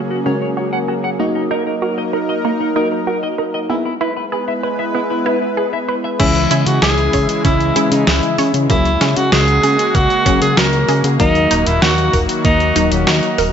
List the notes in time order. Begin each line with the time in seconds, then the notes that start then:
Already playing: C#3 F#3 A#3 C#4 G#4
0.10 F#4
0.26 C#3 G#3 C#4 F#4 A#4 C#5
0.41 C#5
0.57 F#4 C#5
0.73 F#5
0.88 F#4 G#4
1.04 F#5
1.19 A#3 D#4 F#4 A#4 D#5
1.35 D#4
1.51 D#4 A#4
1.67 A#4
1.82 F#4 A#4
1.98 D#5
2.13 D#4 A#4
2.29 D#5
2.45 A#3 D#4
2.60 D#4
2.76 A#3 D#4 F#4 A#4 D#5
2.92 A#4
3.07 F#4 A#4
3.23 D#5
3.38 D#4 A#4
3.54 D#5
3.70 G#3 B3 E4 G#4 B4 E5
3.85 E4
4.01 E4 B4
4.17 B4
4.32 G#4 B4
4.48 E5
4.63 E4 B4
4.79 E5
4.95 B3 E4
5.10 E4
5.26 E4 B4
5.42 B4
5.57 G#4 B4
5.73 E5
5.88 E4 B4
6.04 E5
6.20 C#2 C#3 E3 G#3 C#4 E4 G#4, kick, closed hi-hat, crash
6.35 closed hi-hat
6.51 C#3 E4, closed hi-hat
6.66 C#3 F#4, closed hi-hat
6.82 C#2 G#4, snare, closed hi-hat
6.98 closed hi-hat
7.13 C#3 C#5, kick, open hi-hat
7.29 closed hi-hat
7.45 C#2 C#4 E4, kick, closed hi-hat
7.60 closed hi-hat
7.76 C#3 E3 G#3 C#4 E4 G#4, closed hi-hat
7.92 C#3 D#4, closed hi-hat
8.07 C#2 E4 G#4, snare, closed hi-hat
8.23 closed hi-hat
8.38 C#3 C#5, open hi-hat
8.54 C#3, closed hi-hat
8.70 C#2 F#3 G#3 A#3 C#4 E4 F#4 G#4, kick, closed hi-hat
8.85 closed hi-hat
9.01 C#3 C#4, snare, closed hi-hat
9.17 C#3 F#4, closed hi-hat
9.32 C#2 F#4 G#4, snare, closed hi-hat
9.48 closed hi-hat
9.63 C#3 G#4, open hi-hat
9.79 closed hi-hat
9.95 C#2 A#3 F#4, kick, closed hi-hat
10.10 closed hi-hat
10.26 C#3 F#3 A#3 C#4 G#4, kick, closed hi-hat
10.42 C#3 G#4, closed hi-hat
10.57 C#2 F#4 A#4, snare, closed hi-hat
10.73 closed hi-hat
10.88 C#3 G#4, open hi-hat
11.04 C#3, closed hi-hat
11.20 D#2 D#3 F#3 A#3 D#4 F#4 A#4, kick, closed hi-hat
11.35 closed hi-hat
11.51 D#1 D#4, closed hi-hat
11.66 D#1 E4, closed hi-hat
11.82 D#2 F#4, snare, closed hi-hat
11.98 closed hi-hat
12.13 D#1 A#4, kick, open hi-hat
12.29 closed hi-hat
12.45 D#2 A#3 D#4, kick, closed hi-hat
12.60 closed hi-hat
12.76 D#1 F#3 A#3 D#4 A#4, closed hi-hat
12.91 D#1 C#4, closed hi-hat
13.07 D#2 D#4 F#4, snare, closed hi-hat
13.23 closed hi-hat
13.38 D#1 A#4, open hi-hat